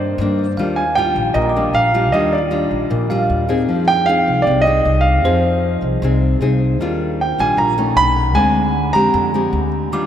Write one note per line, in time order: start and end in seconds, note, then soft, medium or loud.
0.00 0.16 G2 medium
0.00 0.56 G2 soft
0.00 0.16 D#3 medium
0.00 0.16 A#3 medium
0.00 0.16 D4 medium
0.00 0.35 C5 medium
0.18 0.55 G2 medium
0.18 0.46 D#3 soft
0.18 0.46 A#3 medium
0.18 0.46 D4 medium
0.57 1.11 D#2 medium
0.57 1.34 D#3 medium
0.57 0.83 G3 medium
0.57 0.83 D4 medium
0.57 0.84 F4 medium
0.57 1.71 F5 medium
0.76 0.95 G#5 medium
0.95 1.52 G3 medium
0.95 1.52 D4 medium
0.95 1.53 F4 medium
0.95 1.36 G5 medium
1.16 1.34 A#1 medium
1.34 1.71 A#1 loud
1.34 2.11 A#2 soft
1.34 1.75 D#5 medium
1.34 2.49 A#5 soft
1.49 2.61 D6 soft
1.56 1.91 G3 soft
1.56 1.91 D4 medium
1.56 1.91 F4 medium
1.73 2.12 A#1 medium
1.73 2.14 F5 medium
1.94 2.10 G3 medium
1.94 2.10 D4 medium
1.94 2.10 F4 medium
2.12 2.67 D#2 medium
2.12 2.89 D#3 medium
2.12 2.38 G3 medium
2.12 2.38 D4 medium
2.12 2.39 F4 medium
2.12 2.33 D#5 medium
2.33 3.06 D5 medium
2.51 3.07 G3 medium
2.51 3.07 D4 medium
2.51 3.07 F4 medium
2.71 2.89 A#1 medium
2.90 3.27 A#1 medium
2.90 3.66 A#2 medium
3.10 3.46 G3 medium
3.10 3.47 D4 medium
3.10 3.47 F4 medium
3.10 3.84 F5 medium
3.30 3.68 D#2 medium
3.49 4.04 C4 medium
3.49 4.04 D#4 medium
3.49 4.04 G#4 medium
3.68 4.23 F2 medium
3.68 4.44 F3 medium
3.88 4.08 G5 medium
4.06 4.63 C4 soft
4.06 4.63 D#4 soft
4.06 4.64 G#4 medium
4.06 4.47 F5 medium
4.28 4.45 C2 medium
4.42 4.64 D5 medium
4.47 4.83 C2 medium
4.47 5.22 C3 soft
4.62 5.04 D#5 medium
4.66 5.21 C4 medium
4.66 5.22 D#4 medium
4.66 5.22 G#4 medium
4.85 5.24 C2 medium
5.01 5.77 F5 medium
5.24 5.79 F2 medium
5.24 6.00 F3 medium
5.24 5.99 C4 medium
5.24 5.99 D#4 medium
5.24 5.99 G#4 medium
5.24 6.39 C5 medium
5.82 6.00 C2 medium
6.02 6.38 C2 medium
6.02 6.79 C3 medium
6.02 6.38 C4 medium
6.02 6.39 D#4 soft
6.02 6.39 G#4 medium
6.41 6.80 C2 medium
6.41 6.79 C4 medium
6.41 6.79 D#4 soft
6.41 6.79 G#4 medium
6.80 7.34 D#2 medium
6.80 7.56 D#3 medium
6.80 7.19 G3 medium
6.80 7.19 D4 medium
6.80 7.19 F4 medium
7.21 7.40 G5 medium
7.38 7.56 A#1 medium
7.38 7.75 G3 medium
7.38 7.75 D4 soft
7.38 7.75 F4 medium
7.38 7.57 G#5 medium
7.57 7.94 A#1 medium
7.57 7.95 A#2 soft
7.57 7.98 A#5 medium
7.78 8.33 A3 medium
7.78 8.33 C#4 medium
7.78 8.33 D#4 medium
7.96 8.35 B1 medium
7.96 8.37 B5 loud
8.16 8.53 F#5 soft
8.35 8.90 D2 medium
8.35 9.11 D3 medium
8.35 8.74 G#3 medium
8.35 8.74 C4 medium
8.35 8.95 G#5 medium
8.93 9.12 F2 medium
8.93 9.30 G#3 medium
8.93 9.30 C4 medium
8.93 9.31 G4 medium
8.93 9.67 A#5 medium
9.13 9.50 F2 loud
9.13 9.89 D3 soft
9.34 9.89 G#3 medium
9.34 9.89 C4 soft
9.34 9.89 G4 medium
9.53 9.92 D2 medium
9.92 10.06 D#2 medium
9.92 10.06 D#3 medium
9.92 10.06 G3 medium
9.92 10.06 D4 medium
9.92 10.06 F4 medium
9.92 10.06 D6 soft